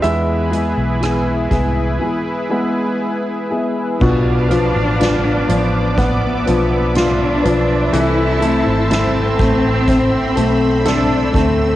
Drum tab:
CC |--------|x-------|--------|
HH |xxxx----|-xxxxxxx|xxxxxxxx|
SD |--r-----|--o---o-|--o---o-|
BD |---o----|o---o---|---oo--o|